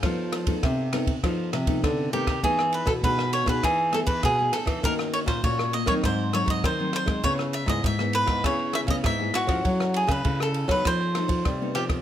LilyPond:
<<
  \new Staff \with { instrumentName = "Cavaquinho" } { \time 4/4 \key e \major \tempo 4 = 100 r2. r8 g'8 | gis'8 b'16 a'16 b'8 cis''16 b'16 gis'8 a'16 b'16 gis'8 a'8 | ais'8 cis''16 c''16 cis''8 dis''16 cis''16 bis'8 cis''16 dis''16 bis'8 bis'8 | cis''8 e''16 dis''16 e''8 b'8 cis''8 e''16 dis''16 e''8 fis'8~ |
fis'8 gis'16 b'8 a'8 b'16 c''4. g'8 | }
  \new Staff \with { instrumentName = "Nylon-string guitar" } { \time 4/4 \key e \major << { <b ees' a'>8. <b ees' a'>8. <b ees' a'>16 r16 <b ees' a'>8 r16 <b ees' a'>8. <b ees' a'>16 r16 | <b dis' gis'>8. r16 <b dis' gis'>8. <b dis' gis'>8. <b dis' gis'>8 r16 <b dis' gis'>8. | <ais cis' fis'>4 <ais cis' fis'>8 r16 <fis c' dis'>8. <fis bis dis'>8. <fis bis dis'>8. | <b e' gis'>8 r16 <b e' gis'>8 <b e' gis'>8. <b e' gis'>8. <b e' gis'>8 <b e' gis'>8 <cis' e' a'>16~ |
<cis' e' a'>8. r16 <cis' e' a'>8. <b dis' a'>8. <ees' a'>8. <b ees' a'>8. | } \\ { f4 c4 f4 c4 | e4 b,4 e4 b,4 | dis4 ais,4 gis,4 dis4 | cis4 gis,4 cis4 gis,4 |
fis4 cis4 f4 c4 | } >> }
  \new Staff \with { instrumentName = "Nylon-string guitar" } { \clef bass \time 4/4 \key e \major f4 c4 f8 c8 d8 ees8 | e8. b,16 b,8. b,16 e8. e16 b,8 r16 e16 | dis8. ais,16 ais,8. dis16 gis,8. gis,16 dis8 r16 gis16 | cis8. gis,16 gis,8. gis,16 cis8. cis16 gis,8 r16 f16 |
fis8. cis16 cis8. fis16 f8. f16 g8 f8 | }
  \new DrumStaff \with { instrumentName = "Drums" } \drummode { \time 4/4 <bd cymr ss>8 <cymr ss>16 <bd cymr>16 <bd cymr ss>8 <cymr ss>16 <bd cymr>16 <bd cymr ss>8 <cymr ss>16 <bd cymr>16 <bd cymr ss>8 cymr16 <bd cymr ss>16 | <bd cymr>16 ss16 cymr16 <bd cymr ss>16 <bd cymr>16 ss16 cymr16 <bd cymr ss>16 <bd cymr ss>8 <cymr ss>16 <bd cymr>16 <bd cymr ss>8 <cymr ss>16 <bd cymr ss>16 | <bd cymr>16 ss16 cymr16 <bd cymr ss>16 <bd cymr>16 ss16 cymr16 <bd cymr ss>16 <bd cymr ss>8 <cymr ss>16 <bd cymr>16 <bd cymr ss>8 <cymr ss>16 <bd cymr ss>16 | <bd cymr>16 ss16 cymr16 <bd cymr ss>16 <bd cymr>16 ss16 cymr16 <bd cymr ss>16 <bd cymr ss>8 <cymr ss>16 <bd cymr>16 <bd cymr ss>8 <cymr ss>16 <bd cymr ss>16 |
<bd cymr>16 ss16 cymr16 <bd cymr ss>16 <bd cymr>16 ss16 cymr16 <bd cymr ss>16 <bd cymr ss>8 <cymr ss>16 <bd cymr>16 <bd cymr ss>8 <cymr ss>16 <bd cymr ss>16 | }
>>